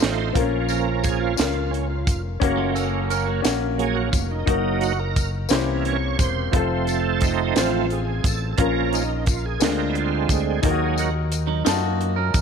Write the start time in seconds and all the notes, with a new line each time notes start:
Already playing: A3 C4 D#4 F4 A4 C5 D#5 F5
0.00 A1, snare, tambourine
0.33 A#1 A#2 F3 A#3 C4 C#4 F4 A#4, kick, closed hi-hat
0.40 C#4
0.69 A#4, closed hi-hat, tambourine
0.87 A#4
1.03 G#4, kick, closed hi-hat, tambourine
1.21 F4
1.36 C#2 C#4 F4 A#4, snare, closed hi-hat, tambourine
1.71 C#4, closed hi-hat
1.90 F4
2.07 F1, kick, closed hi-hat, tambourine
2.40 F#1 F#3 A#3 C#4 F#4, kick, closed hi-hat
2.57 A3 F4
2.75 C#4 A4, closed hi-hat, tambourine
3.10 C#4 A#4, closed hi-hat, tambourine
3.26 A#3 F#4
3.42 A#1 C#4 F#4, snare, closed hi-hat, tambourine
3.46 A#4
3.78 F#3 A#3 C#4 G#4, closed hi-hat
3.95 F#4
4.12 F1 F4, kick, closed hi-hat, tambourine
4.31 D#4
4.46 F#1 F#3 A#3 D#4 F#4 A#4, kick, closed hi-hat
4.81 F#4, closed hi-hat, tambourine
4.99 A#4
5.16 kick, closed hi-hat, tambourine
5.49 C2 C3 E3 A#3 C#4 E4 G4 C5, snare, closed hi-hat, tambourine
5.85 C#5, closed hi-hat
6.19 E1 C5, kick, closed hi-hat, tambourine
6.51 F1 F3 A3 C4 F4, kick, closed hi-hat
6.56 A4
6.87 A4, closed hi-hat, tambourine
7.21 D#4, kick, closed hi-hat, tambourine
7.55 A1 F3 A3 C4 F4 C5, snare, closed hi-hat, tambourine
7.59 F4
7.90 G#4, closed hi-hat
8.24 A1 A4, kick, closed hi-hat, tambourine
8.53 A4
8.57 A#1 A#2 F3 A#3 C#4 F4 A#4, kick, closed hi-hat
8.93 D#4, closed hi-hat, tambourine
9.26 F4, kick, closed hi-hat, tambourine
9.46 G#4
9.60 D2 D3 G#3 A#3 C4 D4 F4 A#4, snare, closed hi-hat, tambourine
9.64 A#4
9.89 E4
9.95 F4, closed hi-hat
10.29 D2 G#4, kick, closed hi-hat, tambourine
10.62 D#2 D#3 F#3 D#4 F4 A#4, kick, closed hi-hat
10.66 A#3
10.71 F#4
10.98 F#4, closed hi-hat, tambourine
11.32 closed hi-hat, tambourine
11.47 F#3 D#4
11.65 F#2 A3 D#4 F4 A5, snare, closed hi-hat, tambourine
11.73 F#4
11.83 A#3 F#4
12.01 closed hi-hat
12.16 C#4 A#4
12.34 E2, kick, closed hi-hat, tambourine